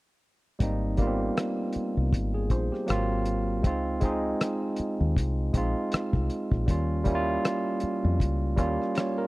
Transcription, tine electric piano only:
0.59 0.92 G3 medium
0.59 0.92 A#3 medium
0.59 0.93 C4 medium
0.63 0.94 D#4 medium
0.97 2.24 G3 medium
0.97 2.25 A#3 medium
0.97 1.06 B3 medium
1.02 2.26 F4 medium
1.07 2.29 C4 medium
2.34 2.50 G#4 medium
2.51 2.71 C5 medium
2.72 3.08 G4 soft
2.86 3.51 F#3 medium
2.86 3.52 A#3 medium
2.86 3.53 C4 medium
2.91 3.53 F4 medium
3.62 3.95 G#3 medium
3.62 3.96 C4 medium
3.62 3.97 D#4 medium
3.67 3.97 F4 medium
4.01 5.27 G#3 medium
4.01 5.28 C4 medium
4.01 5.29 D#4 medium
4.05 5.30 G#4 medium
5.53 6.49 G#3 medium
5.53 6.50 C4 medium
5.53 6.51 D#4 medium
5.57 6.51 F4 medium
6.66 6.99 G3 medium
6.66 7.00 A#3 medium
6.66 7.00 C#4 medium
6.71 7.01 F4 medium
7.04 8.31 G3 medium
7.04 8.32 A#3 medium
7.04 8.33 C#4 medium
7.08 7.14 E4 medium
7.15 8.37 F4 medium
8.56 9.27 G3 medium
8.56 9.27 A#3 medium
8.56 9.27 C#4 medium
8.61 9.27 F4 medium
8.96 9.16 C#5 medium
9.18 9.27 A#4 medium

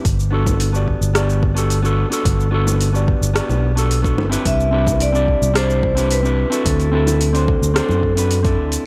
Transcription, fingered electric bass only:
0.05 0.94 G1 medium
1.01 2.03 G1 medium
2.25 3.14 G1 medium
3.21 3.39 G1 medium
3.49 4.18 B1 medium
4.18 4.36 G1 loud
4.46 5.34 C2 medium
5.42 6.44 C2 medium
6.66 7.54 D2 medium
7.62 7.79 D2 loud
7.89 8.58 F#2 medium
8.58 8.76 D2 loud

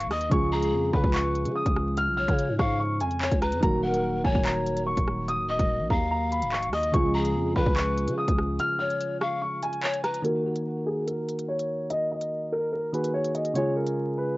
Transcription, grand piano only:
0.11 0.27 D#6 medium
0.32 0.48 C#6 loud
0.52 0.91 A#5 medium
0.94 1.10 B5 medium
1.14 1.53 C#6 medium
1.56 1.95 D#6 medium
1.98 2.13 F6 loud
2.17 2.56 F6 medium
2.59 2.75 C#6 medium
2.80 2.96 C#6 medium
3.01 3.40 G#5 medium
3.42 3.58 A#5 medium
3.63 3.79 A#5 loud
3.83 4.22 F#5 medium
4.24 4.40 G#5 medium
4.45 4.84 A#5 medium
4.86 5.25 C#6 medium
5.28 5.44 D#6 loud
5.50 5.88 D#6 medium
5.90 6.06 A#5 medium
6.11 6.27 A#5 medium
6.32 6.48 B5 medium
6.52 6.68 C#6 medium
6.73 6.89 D#6 medium
6.94 7.10 C#6 loud
7.14 7.53 A#5 medium
7.56 7.72 B5 medium
7.76 8.15 C#6 medium
8.18 8.57 D#6 medium
8.60 8.75 F6 loud
8.79 9.18 F6 medium
9.21 9.37 C#6 medium
9.42 9.58 C#6 medium
9.63 10.02 G#5 medium
10.04 10.20 A#5 medium
10.25 10.41 A#4 medium
10.45 10.84 F#4 medium
10.86 11.02 G#4 medium
11.07 11.46 A#4 medium
11.48 11.87 C#5 medium
11.90 12.06 D#5 loud
12.12 12.50 D#5 medium
12.52 12.68 A#4 medium
12.73 12.89 A#4 medium
12.94 13.10 B4 medium
13.14 13.30 C#5 medium
13.35 13.51 D#5 medium
13.56 13.72 C#5 medium
13.76 14.15 A#4 medium
14.18 14.34 B4 medium

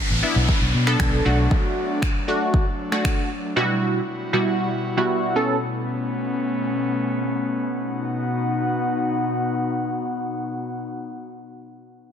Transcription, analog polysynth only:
0.23 0.59 B3 loud
0.23 0.60 D4 medium
0.23 0.60 E4 loud
0.87 1.23 B3 loud
0.87 1.24 D4 medium
0.87 1.24 A4 loud
1.25 2.07 A3 medium
1.25 2.08 D4 medium
1.25 2.08 F#4 loud
2.28 2.65 A3 loud
2.28 2.65 D4 medium
2.28 2.65 F#4 loud
2.92 3.29 A3 loud
2.92 3.29 D4 medium
2.92 3.29 F#4 loud
3.56 4.00 B2 loud
3.56 4.00 G3 medium
3.56 4.00 E4 loud
3.56 4.00 F#4 loud
4.33 4.70 B2 loud
4.33 4.70 G3 medium
4.33 4.70 E4 medium
4.33 4.70 F#4 loud
4.97 5.34 B2 loud
4.97 5.34 G3 medium
4.97 5.34 E4 medium
4.97 5.34 F#4 loud
5.36 5.56 B3 medium
5.36 5.56 C#4 medium
5.36 5.56 A4 loud

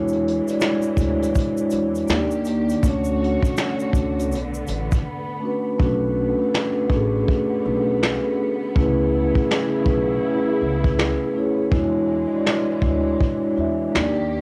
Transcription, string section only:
0.00 2.06 E3 medium
0.00 2.06 G#3 medium
2.09 2.83 D#3 medium
2.09 2.83 A#3 medium
2.09 2.83 G4 medium
2.84 5.77 D3 medium
2.84 5.77 A3 medium
2.84 4.30 F#4 medium
2.84 4.30 C#5 medium
4.32 5.78 B3 medium
5.79 8.73 D3 medium
5.79 8.73 A3 medium
5.79 11.68 B3 medium
8.75 11.69 C#3 medium
8.75 11.69 E4 medium
8.75 11.69 G#4 medium
11.70 13.91 E3 medium
11.70 13.91 G#3 medium
13.93 14.41 D#3 medium
13.93 14.41 A#3 medium
13.93 14.41 G4 medium

